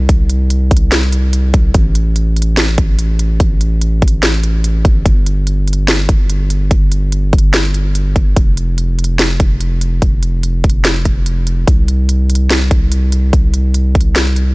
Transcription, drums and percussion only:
0.09 kick loud
0.09 closed hi-hat medium
0.30 closed hi-hat medium
0.50 closed hi-hat medium
0.71 kick loud
0.71 closed hi-hat medium
0.77 closed hi-hat medium
0.92 snare loud
0.92 closed hi-hat medium
1.13 closed hi-hat medium
1.33 closed hi-hat medium
1.54 kick loud
1.54 closed hi-hat medium
1.74 kick loud
1.74 closed hi-hat medium
1.95 closed hi-hat medium
2.16 closed hi-hat medium
2.37 closed hi-hat medium
2.42 closed hi-hat medium
2.57 snare loud
2.57 closed hi-hat medium
2.78 kick loud
2.78 closed hi-hat medium
2.99 closed hi-hat medium
3.19 closed hi-hat medium
3.40 kick loud
3.40 closed hi-hat medium
3.61 closed hi-hat medium
3.82 closed hi-hat medium
4.02 kick loud
4.02 closed hi-hat soft
4.08 closed hi-hat medium
4.23 snare loud
4.23 closed hi-hat medium
4.44 closed hi-hat medium
4.64 closed hi-hat medium
4.85 kick loud
4.85 closed hi-hat medium
5.06 kick loud
5.06 closed hi-hat medium
5.26 closed hi-hat medium
5.47 closed hi-hat medium
5.68 closed hi-hat soft
5.73 closed hi-hat medium
5.88 snare loud
5.88 closed hi-hat medium
6.09 kick loud
6.09 closed hi-hat medium
6.30 closed hi-hat medium
6.50 closed hi-hat medium
6.71 kick loud
6.71 closed hi-hat medium
6.92 closed hi-hat medium
7.12 closed hi-hat medium
7.33 kick loud
7.33 closed hi-hat soft
7.38 closed hi-hat medium
7.54 snare loud
7.54 closed hi-hat medium
7.74 closed hi-hat medium
7.95 closed hi-hat medium
8.16 kick loud
8.16 closed hi-hat medium
8.36 kick loud
8.36 closed hi-hat medium
8.57 closed hi-hat medium
8.78 closed hi-hat medium
8.99 closed hi-hat medium
9.04 closed hi-hat medium
9.19 snare loud
9.19 closed hi-hat medium
9.40 kick loud
9.40 closed hi-hat medium
9.61 closed hi-hat medium
9.81 closed hi-hat medium
10.02 kick loud
10.02 closed hi-hat medium
10.23 closed hi-hat medium
10.43 closed hi-hat medium
10.64 kick loud
10.64 closed hi-hat medium
10.70 closed hi-hat medium
10.85 snare loud
10.85 closed hi-hat medium
11.05 kick medium
11.05 closed hi-hat medium
11.26 closed hi-hat medium
11.47 closed hi-hat medium
11.68 kick loud
11.68 closed hi-hat medium
11.88 closed hi-hat medium
12.09 closed hi-hat medium
12.30 closed hi-hat medium
12.35 closed hi-hat medium
12.50 snare loud
12.50 closed hi-hat medium
12.71 kick loud
12.71 closed hi-hat medium
12.92 closed hi-hat medium
13.12 closed hi-hat medium
13.33 kick loud
13.33 closed hi-hat medium
13.54 closed hi-hat medium
13.74 closed hi-hat medium
13.95 kick loud
13.95 closed hi-hat medium
14.01 closed hi-hat medium
14.16 snare loud
14.16 closed hi-hat medium
14.36 closed hi-hat medium

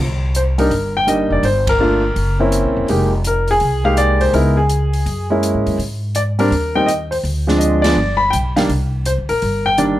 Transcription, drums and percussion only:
0.35 closed hi-hat soft
0.58 open hi-hat soft
0.71 open hi-hat soft
1.08 closed hi-hat soft
1.43 open hi-hat soft
1.67 kick medium
1.67 ride medium
2.16 open hi-hat soft
2.52 closed hi-hat soft
2.88 open hi-hat soft
3.24 closed hi-hat soft
3.48 open hi-hat soft
3.60 open hi-hat soft
3.97 closed hi-hat soft
4.21 open hi-hat soft
4.34 open hi-hat soft
4.69 closed hi-hat soft
4.93 open hi-hat soft
5.06 open hi-hat soft
5.43 closed hi-hat soft
5.67 open hi-hat soft
5.79 open hi-hat soft
6.15 closed hi-hat medium
6.39 open hi-hat soft
6.52 open hi-hat soft
6.88 closed hi-hat soft
7.12 open hi-hat soft
7.25 open hi-hat soft
7.48 snare soft
7.61 closed hi-hat medium
7.84 snare medium
7.84 ride medium
8.33 closed hi-hat soft
8.57 snare soft
8.57 open hi-hat soft
8.69 open hi-hat soft
9.05 closed hi-hat soft
9.29 open hi-hat soft
9.42 open hi-hat soft
9.78 closed hi-hat soft

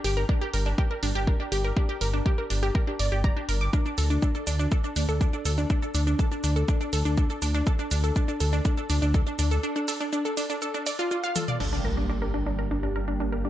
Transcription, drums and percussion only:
0.04 open hi-hat loud
0.29 kick loud
0.54 open hi-hat loud
0.78 kick loud
1.03 open hi-hat loud
1.27 kick loud
1.52 open hi-hat loud
1.77 kick loud
2.01 open hi-hat loud
2.26 kick loud
2.50 open hi-hat loud
2.75 kick loud
2.99 open hi-hat loud
3.24 kick loud
3.49 open hi-hat loud
3.73 kick loud
3.73 shaker soft
3.86 shaker soft
3.98 open hi-hat loud
3.98 shaker medium
4.10 shaker soft
4.22 kick loud
4.22 shaker soft
4.35 shaker soft
4.47 open hi-hat loud
4.47 shaker medium
4.60 shaker soft
4.72 kick loud
4.72 shaker soft
4.84 shaker soft
4.96 open hi-hat loud
4.96 shaker medium
5.09 shaker soft
5.21 kick loud
5.21 shaker soft
5.33 shaker soft
5.45 open hi-hat loud
5.45 shaker medium
5.58 shaker soft
5.70 kick loud
5.70 shaker soft
5.82 shaker soft
5.95 open hi-hat loud
5.95 shaker medium
6.07 shaker soft
6.19 kick loud
6.19 shaker soft
6.32 shaker soft
6.44 open hi-hat medium
6.44 shaker medium
6.56 shaker soft
6.68 kick loud
6.68 shaker soft
6.81 shaker soft
6.93 open hi-hat medium
6.93 shaker medium
7.05 shaker soft
7.18 kick loud
7.18 shaker soft
7.30 shaker soft
7.42 open hi-hat loud
7.42 shaker medium
7.55 shaker soft
7.67 kick loud
7.67 shaker soft
7.79 shaker soft
7.91 open hi-hat loud
7.91 shaker medium
8.04 shaker soft
8.16 kick loud
8.16 shaker soft
8.28 shaker soft
8.40 open hi-hat medium
8.40 shaker medium
8.53 shaker soft
8.65 kick loud
8.65 shaker soft
8.78 shaker soft
8.90 open hi-hat medium
8.90 shaker medium
9.02 shaker soft
9.14 kick loud
9.14 shaker soft
9.27 shaker soft
9.39 open hi-hat medium
9.39 shaker medium
9.51 shaker soft
9.63 shaker soft
9.76 shaker soft
9.88 open hi-hat loud
9.88 shaker medium
10.01 shaker soft
10.13 shaker soft
10.25 shaker soft
10.37 open hi-hat loud
10.37 shaker medium
10.50 shaker soft
10.62 shaker soft
10.74 shaker soft
10.86 open hi-hat loud
10.86 shaker medium
10.99 shaker soft
11.11 shaker soft
11.24 shaker soft
11.36 open hi-hat loud
11.36 high tom medium
11.36 shaker medium
11.48 mid tom medium
11.48 shaker soft
11.60 crash medium

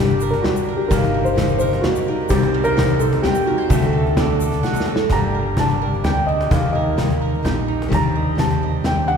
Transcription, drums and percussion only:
0.09 cajon slap soft
0.09 shaker soft
0.20 cajon slap soft
0.20 shaker loud
0.34 cajon slap medium
0.44 cajon bass medium
0.44 snare medium
0.44 cajon slap soft
0.44 ride medium
0.56 shaker medium
0.91 kick medium
0.91 cajon bass medium
0.91 ride medium
0.91 shaker loud
1.04 cajon slap medium
1.26 shaker medium
1.37 cajon bass medium
1.37 snare medium
1.37 ride medium
1.49 cajon slap soft
1.49 shaker soft
1.60 cajon slap soft
1.60 shaker medium
1.73 cajon slap medium
1.84 cajon bass medium
1.84 snare medium
1.84 cajon slap soft
1.84 ride medium
1.96 shaker medium
2.20 cajon slap soft
2.29 cajon bass medium
2.29 kick medium
2.29 ride medium
2.29 shaker medium
2.43 cajon slap medium
2.54 ride medium
2.64 shaker medium
2.77 cajon bass loud
2.77 snare medium
2.77 ride medium
2.89 cajon slap soft
2.89 shaker soft
3.00 cajon slap soft
3.00 shaker medium
3.13 cajon slap medium
3.24 cajon bass medium
3.24 snare medium
3.24 cajon slap soft
3.24 ride medium
3.35 shaker medium
3.60 cajon slap soft
3.70 kick medium
3.70 cajon bass loud
3.70 ride soft
3.70 shaker loud
3.83 cajon slap medium
4.06 cajon slap soft
4.17 cajon bass medium
4.17 cajon slap soft
4.17 snare medium
4.17 ride soft
4.17 shaker soft
4.29 cajon slap soft
4.41 shaker loud
4.52 cajon bass medium
4.63 cajon bass medium
4.63 snare medium
4.74 cajon bass medium
4.74 shaker medium
4.80 snare medium
4.86 cajon slap medium
4.96 snare medium
4.96 cajon slap medium
5.10 cajon bass medium
5.10 kick medium
5.10 closed hi-hat soft
5.57 cajon bass medium
5.57 snare medium
5.57 closed hi-hat soft
5.70 cajon slap medium
5.93 cajon slap soft
6.04 cajon bass medium
6.04 cajon slap soft
6.04 snare medium
6.04 closed hi-hat soft
6.28 cajon slap soft
6.41 cajon slap medium
6.51 kick medium
6.51 cajon bass loud
6.51 closed hi-hat soft
6.98 cajon bass medium
6.98 snare medium
6.98 closed hi-hat soft
7.10 cajon slap medium
7.34 cajon slap soft
7.45 cajon bass medium
7.45 cajon slap soft
7.45 snare medium
7.45 closed hi-hat soft
7.69 cajon slap soft
7.82 cajon slap medium
7.92 kick medium
7.92 cajon bass medium
7.92 closed hi-hat soft
8.38 cajon bass medium
8.38 snare medium
8.38 closed hi-hat soft
8.50 cajon slap medium
8.84 cajon bass medium
8.84 snare medium
8.84 cajon slap soft
8.84 closed hi-hat medium
9.09 cajon slap soft

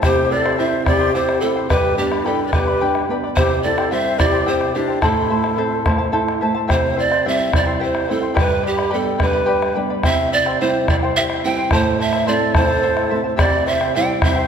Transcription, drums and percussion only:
0.03 bombo rim medium
0.03 bombo low medium
0.46 bombo rim medium
0.73 bombo rim soft
0.86 bombo rim medium
0.86 bombo low medium
1.29 bombo rim medium
1.57 bombo rim soft
1.70 bombo rim medium
1.70 bombo low medium
2.12 bombo rim medium
2.39 bombo rim soft
2.53 bombo rim medium
2.53 bombo low medium
2.95 bombo rim medium
3.24 bombo rim soft
3.37 bombo rim medium
3.37 bombo low medium
3.78 bombo rim medium
4.06 bombo rim soft
4.20 bombo rim medium
4.20 bombo low medium
4.61 bombo rim soft
4.89 bombo rim soft
5.02 bombo rim medium
5.02 bombo low medium
5.44 bombo rim soft
5.72 bombo rim soft
5.86 bombo rim medium
5.86 bombo low medium
6.00 bombo rim soft
6.28 bombo rim medium
6.70 bombo rim medium
6.70 bombo low medium
7.12 bombo rim medium
7.40 bombo rim soft
7.53 bombo rim medium
7.53 bombo low medium
7.95 bombo rim medium
8.23 bombo rim soft
8.37 bombo rim medium
8.37 bombo low medium
8.79 bombo rim medium
9.07 bombo rim soft
9.20 bombo rim medium
9.20 bombo low medium
9.62 bombo rim medium
9.90 bombo rim soft
10.03 bombo rim medium
10.03 bombo low medium
10.46 bombo rim medium
10.74 bombo rim soft
10.88 bombo rim medium
10.88 bombo low medium
11.30 bombo rim medium
11.57 bombo rim soft
11.71 bombo rim medium
11.71 bombo low medium
11.85 bombo rim soft
11.99 bombo rim soft
12.13 bombo rim medium
12.41 bombo rim soft
12.55 bombo rim medium
12.55 bombo low medium
12.97 bombo rim medium
13.39 bombo rim medium
13.39 bombo low medium
13.81 bombo rim medium
14.09 bombo rim soft
14.22 bombo rim medium
14.22 bombo low medium

